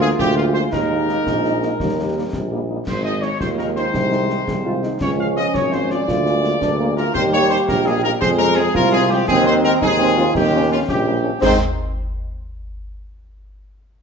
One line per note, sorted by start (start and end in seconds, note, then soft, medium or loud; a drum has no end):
0.00 0.10 D2 loud
0.00 0.69 G#3 loud
0.00 0.07 G#3 medium
0.00 0.68 A#3 loud
0.00 0.08 A#3 medium
0.00 0.74 F4 loud
0.00 0.08 F4 medium
0.00 0.09 G#4 loud
0.00 snare medium
0.19 0.64 D2 loud
0.19 0.36 G4 loud
0.19 concert bass drum medium
0.19 snare medium
0.36 0.44 G#3 medium
0.36 0.44 A#3 medium
0.36 0.45 F4 loud
0.36 0.43 F4 medium
0.54 0.62 G#3 medium
0.54 0.62 A#3 medium
0.54 0.62 F4 medium
0.54 0.62 C5 loud
0.54 snare medium
0.72 1.18 D#2 medium
0.72 1.76 G#3 medium
0.72 2.65 A#3 loud
0.72 2.60 D#4 loud
0.72 2.65 A#4 loud
0.72 concert bass drum medium
0.72 snare medium
0.72 crash soft
0.91 0.97 G#3 medium
0.91 0.97 A#3 medium
0.91 0.97 D#4 medium
1.09 1.16 G#3 medium
1.09 1.15 A#3 medium
1.09 1.16 D#4 medium
1.09 snare medium
1.27 1.71 A#1 medium
1.27 concert bass drum medium
1.27 snare medium
1.45 1.51 G#3 medium
1.45 1.52 A#3 medium
1.45 1.52 D#4 medium
1.45 snare medium
1.62 1.69 G#3 medium
1.62 1.69 A#3 medium
1.62 1.69 D#4 medium
1.62 snare medium
1.80 2.25 D#2 medium
1.80 2.69 G3 medium
1.80 concert bass drum medium
1.80 snare medium
1.98 2.04 G3 medium
1.98 2.05 A#3 medium
1.98 2.04 D#4 medium
2.16 2.22 G3 medium
2.16 2.22 A#3 medium
2.16 2.22 D#4 medium
2.33 2.78 A#1 medium
2.33 concert bass drum medium
2.33 snare medium
2.52 2.58 G3 medium
2.52 2.59 A#3 medium
2.52 2.58 D#4 medium
2.70 2.76 G3 medium
2.70 2.76 A#3 medium
2.70 2.76 D#4 medium
2.87 3.32 G#1 medium
2.87 4.97 D#3 medium
2.87 4.97 G#3 medium
2.87 3.04 C5 loud
2.87 concert bass drum medium
2.87 snare medium
2.87 crash medium
3.05 3.11 G#3 medium
3.05 3.11 D#4 medium
3.05 3.21 D#5 loud
3.22 3.29 G#3 medium
3.22 3.29 D#4 medium
3.22 3.40 C#5 loud
3.22 snare medium
3.41 3.85 D#2 medium
3.41 3.95 F4 medium
3.41 3.49 C5 loud
3.41 concert bass drum medium
3.41 snare medium
3.58 3.65 G#3 medium
3.58 3.65 D#4 medium
3.58 3.66 A#4 medium
3.58 snare medium
3.76 3.83 G#3 medium
3.76 3.83 D#4 medium
3.76 4.97 C5 loud
3.76 snare medium
3.93 4.39 C2 loud
3.93 4.46 D#4 medium
3.93 concert bass drum medium
3.93 snare medium
4.12 4.18 G#3 medium
4.12 4.18 D#4 medium
4.12 snare medium
4.29 4.36 G#3 medium
4.29 4.36 D#4 medium
4.29 snare medium
4.47 4.88 C2 medium
4.47 4.55 G#4 loud
4.47 concert bass drum medium
4.47 snare medium
4.65 4.71 G#3 medium
4.65 4.71 D#4 medium
4.65 4.84 F4 loud
4.83 4.90 G#3 medium
4.83 5.01 D#4 medium
4.83 4.90 D#4 medium
4.83 snare medium
5.01 5.45 C#2 loud
5.01 6.08 F3 medium
5.01 6.04 G#3 medium
5.01 6.04 C#4 loud
5.01 5.10 C#5 loud
5.01 concert bass drum loud
5.01 snare medium
5.01 crash soft
5.19 5.25 G#3 medium
5.19 5.25 F4 medium
5.19 5.27 F5 loud
5.36 5.43 G#3 medium
5.36 5.42 F4 medium
5.36 5.53 D#5 loud
5.36 snare medium
5.54 5.99 G#1 medium
5.54 5.72 C#5 loud
5.54 concert bass drum medium
5.54 snare medium
5.71 5.78 G#3 medium
5.71 5.78 F4 medium
5.71 5.90 C5 loud
5.71 snare medium
5.89 5.96 G#3 medium
5.89 5.96 F4 medium
5.89 6.97 D5 loud
5.89 snare medium
6.08 6.53 D2 medium
6.08 7.15 G#3 medium
6.08 8.22 A#3 medium
6.08 6.58 F4 loud
6.08 concert bass drum medium
6.08 snare medium
6.25 6.32 G#3 medium
6.25 6.32 A#3 medium
6.25 6.32 F4 medium
6.25 snare medium
6.44 6.50 G#3 medium
6.44 6.50 A#3 medium
6.44 6.50 F4 medium
6.44 snare medium
6.61 7.06 D2 medium
6.61 6.70 D4 loud
6.61 concert bass drum medium
6.61 snare medium
6.79 6.86 G#3 medium
6.79 6.86 A#3 medium
6.79 6.88 A#3 medium
6.79 6.86 F4 medium
6.96 7.04 G#3 medium
6.96 7.04 A#3 medium
6.96 7.04 F4 medium
6.96 7.14 F4 medium
6.96 7.13 A#4 loud
6.96 snare medium
7.14 7.59 D#2 loud
7.14 8.18 G3 medium
7.14 8.18 G4 loud
7.14 7.22 C5 loud
7.14 concert bass drum medium
7.14 snare medium
7.14 crash soft
7.32 7.39 G3 medium
7.32 7.39 A#3 medium
7.32 7.39 D#4 medium
7.32 7.49 C#5 loud
7.50 7.56 G3 medium
7.50 7.57 A#3 medium
7.50 7.57 D#4 medium
7.50 7.58 C5 loud
7.50 snare medium
7.68 8.13 A#1 medium
7.68 7.85 A#4 loud
7.68 concert bass drum medium
7.68 snare medium
7.85 7.92 G3 medium
7.85 7.92 A#3 medium
7.85 7.92 D#4 medium
7.85 8.04 G#4 loud
7.85 snare medium
8.03 8.10 G3 medium
8.03 8.10 A#3 medium
8.03 8.10 D#4 medium
8.03 8.11 A#4 loud
8.03 snare medium
8.20 8.66 F2 loud
8.20 9.29 F3 loud
8.20 9.25 G#3 loud
8.20 8.71 G#4 loud
8.20 8.29 C5 loud
8.20 concert bass drum loud
8.20 snare medium
8.38 8.46 G#3 medium
8.38 8.46 C4 medium
8.38 8.55 A#4 loud
8.38 snare medium
8.56 8.63 G#3 medium
8.56 8.63 C4 medium
8.56 8.74 G#4 loud
8.56 snare medium
8.75 9.20 C2 loud
8.75 9.25 F4 loud
8.75 8.92 A#4 loud
8.75 concert bass drum medium
8.75 snare medium
8.92 8.99 G#3 medium
8.92 8.99 C4 medium
8.92 9.09 G#4 loud
9.10 9.17 G#3 medium
9.10 9.17 C4 medium
9.10 9.28 G4 loud
9.10 snare medium
9.28 9.73 D#2 loud
9.28 11.20 D#3 loud
9.28 9.78 C4 loud
9.28 10.35 C4 loud
9.28 9.45 G#4 loud
9.28 concert bass drum loud
9.28 snare medium
9.28 crash soft
9.46 9.52 D#3 medium
9.46 9.52 G#3 medium
9.46 9.52 C4 medium
9.46 9.54 C5 loud
9.63 9.70 D#3 medium
9.63 9.70 G#3 medium
9.63 9.70 C4 medium
9.63 9.72 A#4 loud
9.63 snare medium
9.81 10.26 D#2 loud
9.81 9.90 D#4 loud
9.81 10.32 G#4 loud
9.81 concert bass drum medium
9.81 snare medium
9.98 10.05 D#3 medium
9.98 10.05 G#3 medium
9.98 10.16 C4 loud
9.98 10.05 C4 medium
9.98 snare medium
10.17 10.23 D#3 medium
10.17 10.23 G#3 medium
10.17 10.23 C4 medium
10.17 10.36 F4 loud
10.17 snare medium
10.35 10.80 D#2 loud
10.35 11.21 C#4 loud
10.35 10.70 D#4 loud
10.35 10.71 G4 loud
10.35 concert bass drum loud
10.35 snare medium
10.52 10.59 D#3 medium
10.52 10.59 A#3 medium
10.52 10.59 C#4 medium
10.71 10.77 D#3 medium
10.71 10.77 A#3 medium
10.71 10.77 C#4 medium
10.71 10.79 F4 loud
10.88 11.29 A#1 loud
10.88 11.14 G3 medium
10.88 11.39 G4 loud
10.88 concert bass drum medium
10.88 snare medium
11.06 11.13 D#3 medium
11.06 11.12 A#3 medium
11.06 11.13 C#4 medium
11.24 11.31 D#3 medium
11.24 11.30 A#3 medium
11.24 11.30 C#4 medium
11.41 11.57 G#2 loud
11.41 11.57 D#3 loud
11.41 11.56 C4 loud
11.41 11.57 C4 medium
11.41 11.57 D#4 loud
11.41 11.57 C5 loud
11.41 concert bass drum loud
11.41 snare loud
11.41 crash medium